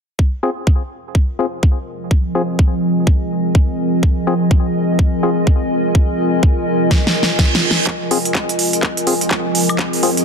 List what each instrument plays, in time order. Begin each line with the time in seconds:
0.19 ambient pad F3 C4 F4 G#4, kick
0.36 ambient pad A#4
0.43 synth stab C4 F4 G#4
0.61 ambient pad D#5
0.67 kick
1.09 ambient pad G#5
1.15 kick
1.39 synth stab C4 F4 G#4
1.63 kick
2.11 kick
2.35 synth stab C4 F4 G#4
2.59 kick
3.07 kick
3.55 kick
4.03 kick
4.27 synth stab C4 F4 G#4
4.51 kick
4.99 kick
5.23 synth stab C4 F4 G#4
5.47 kick
5.95 kick
6.43 kick
6.91 kick, snare, reverse cymbal
7.07 snare
7.23 snare
7.39 kick, snare
7.55 snare
7.71 snare
7.87 ambient pad F3 C4 G#4, kick, clap, riser
8.11 synth stab C4 F4 G#4, open hi-hat
8.25 closed hi-hat
8.35 kick, clap
8.49 closed hi-hat
8.59 open hi-hat
8.73 closed hi-hat
8.83 kick, clap
8.97 closed hi-hat
9.07 synth stab C4 F4 G#4, open hi-hat
9.21 closed hi-hat
9.31 kick, clap
9.55 open hi-hat
9.69 closed hi-hat, high woodblock
9.79 kick, clap
9.93 open hi-hat
10.03 synth stab C4 F4 G#4, open hi-hat
10.17 closed hi-hat